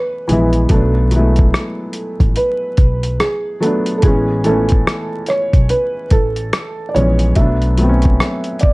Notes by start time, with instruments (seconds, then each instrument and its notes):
Already playing: felt piano B4
0.28 upright bass A#1, felt piano E3 G#3 B3, closed hi-hat
0.33 felt piano E4
0.53 closed hi-hat
0.69 upright bass B1, felt piano F#3 A3 B3 A4, kick, closed hi-hat
0.74 felt piano D4
1.11 felt piano F#3 G#3 B3, closed hi-hat
1.16 felt piano A3 E4
1.36 kick, closed hi-hat
1.54 cross-stick, closed hi-hat
1.93 closed hi-hat
2.20 upright bass A1, kick, closed hi-hat
2.36 felt piano B4, closed hi-hat
2.77 upright bass B1, kick, closed hi-hat
3.03 closed hi-hat
3.20 felt piano G#4, cross-stick, closed hi-hat
3.60 felt piano F#3 A3 B3 A4, closed hi-hat
3.65 felt piano D4
3.86 closed hi-hat
3.98 felt piano A4
4.02 upright bass A1, felt piano E3 G#3 B3 G#4, kick, closed hi-hat
4.07 felt piano C#4
4.44 felt piano E3 A3 B3 A4, closed hi-hat
4.49 felt piano C#4
4.69 kick, closed hi-hat
4.87 cross-stick, closed hi-hat
5.26 felt piano C#5, cross-stick, closed hi-hat
5.53 upright bass B1, kick, closed hi-hat
5.69 felt piano B4, closed hi-hat
6.10 upright bass A1, felt piano A4, kick, closed hi-hat
6.36 closed hi-hat
6.53 cross-stick, closed hi-hat
6.89 felt piano D5
6.94 upright bass A#1, felt piano E3 G#3 B3 C#5, closed hi-hat
6.99 felt piano C#4
7.19 closed hi-hat
7.35 upright bass B1, felt piano F#3 A3 B3 E5, kick, closed hi-hat
7.41 felt piano D4
7.62 closed hi-hat
7.78 felt piano F#3 A3 B3, closed hi-hat
7.83 felt piano C4
7.89 felt piano C#4
8.02 kick, closed hi-hat
8.20 cross-stick, closed hi-hat
8.44 closed hi-hat
8.59 felt piano D5, kick, closed hi-hat